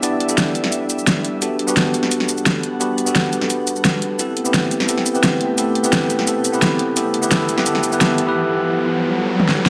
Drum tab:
HH |x-x-x-x-x-x-x-x-|x-x-x-x-x-x-x-x-|x-x-x-x-x-x-x-x-|x-x-x-x-x-x-x-x-|
SH |x--xx-x-x-xxx---|x--xx-x-x-xxx---|x-xxx-x-x-xxx---|x--xx-x-x-xxx---|
SD |----o--o----o---|----o--o-o--o---|----o--o----o---|----o--o-o--o---|
T1 |----------------|----------------|----------------|----------------|

HH |x-x-x-x-x-x-x-x-|x-x-x-x-x-x-x-x-|----------------|
SH |x--xx-x-x-xxx---|x--xx-x-x-xxx---|----------------|
SD |----o--o----o---|----o--o-o--o---|-------------o-o|
T1 |----------------|----------------|------------o---|